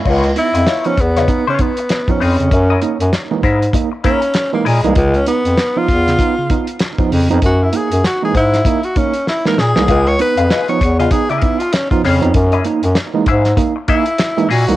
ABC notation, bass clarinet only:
X:1
M:4/4
L:1/16
Q:"Swing 16ths" 1/4=98
K:Gb
V:1 name="Bass clarinet" clef=bass
D,,2 z F,, z2 _F,,2 z6 =F,, F,, | G,,2 z G,, z2 A,,2 z6 B,, =C,, | D,,2 z F,, z2 _F,,2 z6 =F,, F,, | G,,2 z G,, z2 A,,2 z6 B,, =C,, |
D,,2 z F,, z2 _F,,2 z6 =F,, F,, | G,,2 z G,, z2 A,,2 z6 B,, =C,, |]